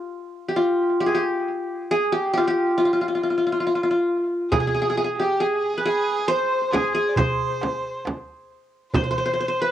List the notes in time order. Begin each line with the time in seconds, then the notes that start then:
Already playing: F4 G4
0.49 G4
0.56 F4
1.01 G4
1.06 G#4
1.15 G4
1.91 G#4
2.13 G4
2.34 F4 G4
2.48 G4
2.78 F4
2.85 F4
2.93 F4
3.01 F4
3.08 F4
3.15 F4
3.23 F4
3.30 F4
3.38 F4
3.47 F4
3.52 F4
3.60 F4
3.67 F4
3.75 F4
3.83 F4
3.91 F4
4.51 G#4, frame drum, darbuka dum
4.60 G#4
4.67 G#4
4.74 G#4
4.81 G#4
4.90 G#4
4.97 G#4
5.04 G#4
5.18 G4
5.40 G#4, darbuka ka
5.63 darbuka ka
5.78 B4
5.85 G#4
6.28 C5
6.71 G#4, darbuka tek, frame drum
6.92 G#4
7.09 D5
7.14 C5, darbuka dum, frame drum
7.61 darbuka tek, frame drum
8.05 darbuka tek, frame drum
8.92 C5, darbuka dum, frame drum
9.04 C5
9.11 C5
9.18 C5
9.26 C5
9.33 C5
9.40 C5
9.48 C5
9.60 B4